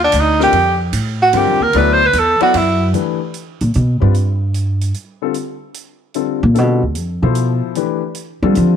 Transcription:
Already playing: D#2
0.04 D4
0.12 D2, hi-hat pedal, ride
0.20 D#4
0.39 D3 G3 C4 F4 A#4, snare
0.43 G4
0.52 F2, ride
0.93 A2, hi-hat pedal, ride
1.22 F#4
1.33 G2 D3 G3 C4 F4 A#4, ride
1.37 G4
1.47 F2
1.60 D#2 A#4
1.73 D2 F#3 B3 E4 A4 D5, ride
1.78 B4
1.93 C5
2.06 B4
2.13 E2, hi-hat pedal, ride
2.19 A4
2.40 F#3 B3 E4 F#4 A4 D5, muted upright bass stroke, ride
2.54 F#2 E4, ride
2.93 E3 A3 D4 G4 B4, closed hi-hat
3.34 closed hi-hat
3.61 A#2, closed hi-hat
3.74 B2, closed hi-hat
4.00 G2 G3 C4 F4 B4 D5
4.14 closed hi-hat
4.54 closed hi-hat
4.81 closed hi-hat
4.94 closed hi-hat
5.22 D3 G3 C4 F4 A4
5.34 closed hi-hat
5.74 closed hi-hat
6.14 D3 G3 C4 F4 A4, closed hi-hat
6.43 A#2
6.54 D3 G3 C4 F4 A4, closed hi-hat
6.58 B2
6.82 D2
6.95 F2, closed hi-hat
7.22 B2 F3 E4 A4 C5
7.35 closed hi-hat
7.75 E3 A3 D4 G4 B4, closed hi-hat
8.15 closed hi-hat
8.43 D3 G3 C4 F4 A4
8.55 F3, closed hi-hat

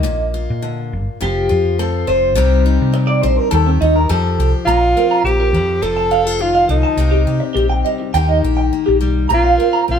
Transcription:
Already playing: A#3 D#5
0.03 A#1 A#2, muted steel-string acoustic guitar stroke
0.34 F4
0.50 A#2
0.62 D3
0.93 G1
1.21 F1 F3 F4 G4
1.49 F2 F4
1.79 C4 F4 A4
2.07 F1 F4 C5
2.35 C2 C3 G3 C4 D#4 G4
2.66 D#4
2.81 C3
2.93 C3, muted clean electric guitar stroke
3.07 D5
3.22 A#1 D3 C5
3.37 A#4
3.51 D#2 D#3 G4 A4
3.66 C4
3.81 D#2 D#4
3.96 A#4
4.09 F2 F3 G4 A4
4.38 C2 G4
4.65 A#1 A#2 F4 A#5, muted steel-string acoustic guitar stroke
4.81 muted clean electric guitar stroke
4.97 C4 A#4
5.11 A#5
5.24 A#1 C4 G4
5.40 A#4
5.53 F2 F3
5.82 F1 F3 F4 A4
5.96 A5
6.11 D4 F5
6.25 F4 A4
6.39 D#3 F4
6.55 F5
6.68 C2 D3 D#4 A4
6.83 A5
6.97 C2 C3 C4 D#4 G4
7.11 G4
7.27 C3 G4
7.40 muted clean electric guitar stroke
7.54 A#1 C4 G4
7.70 G5
7.85 G3 D#5
8.00 muted clean electric guitar stroke
8.14 D#2 D#3 A#3 D#4 G4 G5
8.29 D#5
8.43 A#1 G4
8.57 G5
8.73 A#3
8.86 A#1 G4
9.01 B1 G3
9.29 A#1 A#2 C4 A#5
9.34 F4
9.44 F5
9.58 C4 A#4
9.73 A#5
9.88 A#1 C4 F4

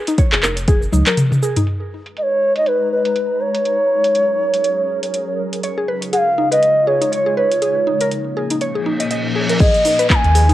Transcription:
0.07 D#4, closed hi-hat, shaker
0.18 C#5, kick, closed hi-hat, shaker
0.32 F1 G#4, clap
0.43 A#4, clap, shaker
0.57 closed hi-hat, shaker
0.68 F1 G#4, kick, closed hi-hat, shaker
0.82 shaker
0.92 C#2 D#4, high tom, shaker
1.06 A#4, clap, closed hi-hat, high tom, shaker
1.17 closed hi-hat, mid tom, shaker
1.32 mid tom, shaker
1.43 G#4, shaker
1.56 D#4, closed hi-hat, mid tom, shaker
1.67 G#3 D#4 B4 A#5, closed hi-hat
2.06 closed hi-hat
2.17 D#5, closed hi-hat
2.23 C#5
2.56 D#5, closed hi-hat
2.66 B4, closed hi-hat
2.92 B4
3.05 closed hi-hat
3.16 closed hi-hat
3.41 C#5
3.55 closed hi-hat
3.65 F#3 C#4 G#4 A#4, closed hi-hat
4.04 closed hi-hat
4.15 closed hi-hat
4.54 closed hi-hat
4.64 closed hi-hat
5.03 closed hi-hat
5.14 closed hi-hat
5.53 closed hi-hat
5.63 C#3 G#3 D#4 F4 C#5, closed hi-hat
5.78 G#4
5.88 B4
6.02 closed hi-hat
6.13 G#4 F#5, closed hi-hat
6.18 F5
6.38 D#4
6.52 B4 D#5, closed hi-hat
6.63 closed hi-hat
6.87 G#4 C#5
7.01 D#4, closed hi-hat
7.12 C#5, closed hi-hat
7.26 G#4
7.37 B4 C#5
7.51 closed hi-hat
7.61 A#2 F3 A#3 C#4 G#4, closed hi-hat
7.87 D#4
8.01 A#4, closed hi-hat
8.11 closed hi-hat
8.37 G#4
8.50 D#4, closed hi-hat
8.61 C#5, closed hi-hat, reverse cymbal
8.75 G#4
8.86 D#4
9.00 D#5, closed hi-hat
9.11 D#5, closed hi-hat
9.36 G#4
9.49 A#4, closed hi-hat
9.60 G#1 G#3 D#4 G#4 A#4 B4 D#5, kick, crash, downlifter, shaker
9.74 closed hi-hat, shaker
9.85 D#4, open hi-hat, shaker
9.99 B4, closed hi-hat, shaker
10.10 B5, kick, clap, shaker
10.15 G#5
10.24 D#2, closed hi-hat
10.35 G#4, open hi-hat, shaker
10.49 D#4, closed hi-hat, shaker

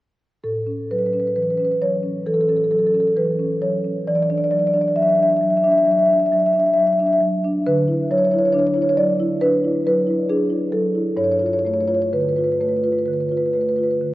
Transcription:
0.43 A2 A4
0.66 C#4
0.91 F#3 B4
0.98 B4
1.06 B4
1.13 C#4 B4
1.20 B4
1.27 B4
1.36 E3 B4
1.43 B4
1.50 B4
1.57 C#4 B4
1.65 B4
1.72 B4
1.82 F#3 C#5
2.03 C#4
2.26 E3 A4
2.34 A4
2.41 A4
2.49 C#4 A4
2.57 A4
2.64 A4
2.71 F#3 A4
2.79 A4
2.87 A4
2.94 C#4 A4
3.00 A4
3.08 A4
3.17 E3 B4
3.39 C#4
3.62 F#3 C#5
3.84 C#4
4.07 E3 D5
4.15 D5
4.23 D5
4.30 D4 D5
4.38 D5
4.44 D5
4.51 F#3 D5
4.59 D5
4.67 D5
4.74 D4 D5
4.81 D5
4.88 D5
4.96 F#3 E5
5.02 E5
5.09 E5
5.16 D4 E5
5.23 E5
5.30 E5
5.37 E5
5.41 F#3 E5
5.50 E5
5.57 E5
5.64 D4 E5
5.71 E5
5.78 E5
5.85 F#3 E5
5.91 E5
5.99 E5
6.06 D4 E5
6.13 E5
6.20 E5
6.26 E5
6.32 F#3 E5
6.39 E5
6.46 E5
6.53 D4 E5
6.60 E5
6.66 E5
6.73 E5
6.77 F#3 E5
6.87 E5
6.93 E5
6.99 D4 E5
7.06 E5
7.13 E5
7.21 F#3
7.44 D4
7.66 D3 B4
7.88 E4
8.11 F#3 C#5
8.18 C#5
8.25 C#5
8.31 E4 C#5
8.39 C#5
8.45 C#5
8.53 D4 C#5
8.59 C#5
8.67 C#5
8.74 E4 C#5
8.82 C#5
8.89 C#5
8.97 F#3 D5
9.20 E4
9.41 D4 B4
9.65 E4
9.87 F#3 B4
10.07 E4
10.29 D4 G#4
10.50 E4
10.72 F#3 A4
10.95 E4
11.17 G2 C#5
11.24 C#5
11.32 C#5
11.39 F4 C#5
11.46 C#5
11.53 C#5
11.59 C#5
11.65 A3 C#5
11.74 C#5
11.80 C#5
11.87 F4 C#5
11.94 C#5
12.02 C#5
12.13 D3 B4
12.21 B4
12.28 B4
12.36 F4 B4
12.44 B4
12.52 B4
12.60 A3 B4
12.68 B4
12.76 B4
12.84 F4 B4
12.92 B4
12.98 B4
13.05 D3 B4
13.13 B4
13.20 B4
13.29 F4 B4
13.37 B4
13.46 B4
13.53 A3 B4
13.61 B4
13.69 B4
13.76 F4 B4
13.83 B4
13.91 B4
14.01 D3

